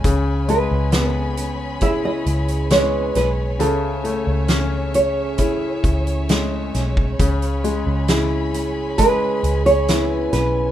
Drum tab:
HH |x-x-x-x-x-xxx-x-|x-x-x-x-x-xxx-x-|xxx-x-x-x-xxx-x-|
SD |----o-------o-o-|----o-------o-o-|----o-------o-o-|
BD |o-------o-------|--------o-o----o|o-------o-------|